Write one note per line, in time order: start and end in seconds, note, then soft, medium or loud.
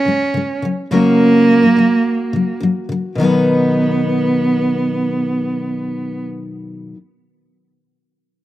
0.00 0.59 C#4 medium
0.00 0.92 C#4 medium
0.05 0.28 C#3 soft
0.05 0.30 G#3 medium
0.34 0.57 C#3 medium
0.34 0.58 G#3 medium
0.62 0.85 C#3 soft
0.62 0.86 F#3 medium
0.91 1.61 C#3 medium
0.91 1.65 F#3 medium
0.91 2.58 A#3 loud
0.91 1.62 C#4 medium
0.91 3.22 F#4 medium
0.91 1.63 A#4 medium
1.63 1.75 C#3 soft
1.63 1.77 F#3 soft
1.76 1.99 C#3 medium
1.76 2.00 F#3 medium
2.33 2.56 C#3 medium
2.33 2.57 F#3 medium
2.60 2.83 C#3 medium
2.60 2.85 F#3 medium
2.89 3.12 C#3 medium
2.89 3.13 F#3 medium
3.15 6.93 B2 medium
3.15 6.95 D#3 medium
3.15 6.21 B3 medium
3.20 6.96 F#3 medium
3.20 6.96 B3 medium
3.20 6.97 D#4 medium
3.24 6.98 B4 medium